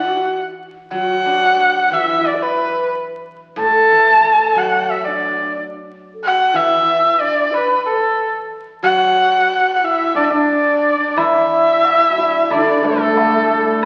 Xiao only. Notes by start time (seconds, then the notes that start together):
Already playing: F#4
0.93 F#4
1.93 E4
2.35 D5
2.43 B4
3.58 A4
4.25 A4
4.57 F#4
5.08 D4
6.14 A4
6.22 A4
6.26 F#4
6.53 E4
7.03 E4
7.19 D4
7.52 B4
7.84 B4
7.89 A4
8.83 F#4
9.82 E4
10.14 D4
10.29 D4
10.99 D4
11.16 E4
12.16 F#4
12.21 E4
12.51 D4
12.83 B4
12.88 A4